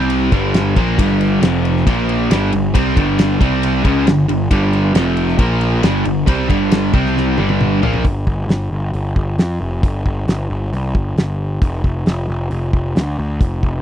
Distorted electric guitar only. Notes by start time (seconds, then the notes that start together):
Already playing: C3 G3 C4
0.32 G2 D3 G3
0.77 A#2 F3 A#3
0.99 G2 D3 G3
1.43 F2 C3 F3
1.87 A#2 F3 A#3
2.30 G2 D3 G3
2.52 G2 D3
2.74 C3 G3 C4
2.96 G2 D3 G3
3.40 C3 G3 C4
3.84 C#3 G#3 C#4
4.08 G2 D3
4.29 G2 D3
4.51 G2 D3 G3
4.94 F2 C3 F3
5.38 A#2 F3 A#3
5.83 G2 D3 G3
6.05 G2 D3
6.26 C3 G3 C4
6.48 G2 D3 G3
6.93 C3 G3 C4
7.38 G2 D3 G3
7.82 A#2 F3 A#3